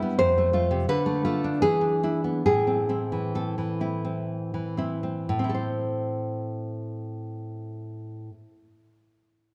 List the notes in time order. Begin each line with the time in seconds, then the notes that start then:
Already playing: G2 G3 E4
0.02 B3
0.19 F2 C5
0.38 A3
0.53 A3 F4
0.71 C3
0.89 D3 B4
1.06 A3
1.25 A3 F4
1.44 D4
1.62 E3 G#4
1.81 D4
2.03 D4 E4
2.24 B3
2.46 A2 G#4
2.67 C4
2.89 C4 E4
3.12 E3
3.35 C4 A4
3.58 E3
3.81 C4 E4
4.05 C4
4.54 E3
4.77 C4 E4
5.03 C4
5.29 A2
5.39 C4
5.44 E4
5.49 A4
5.55 C5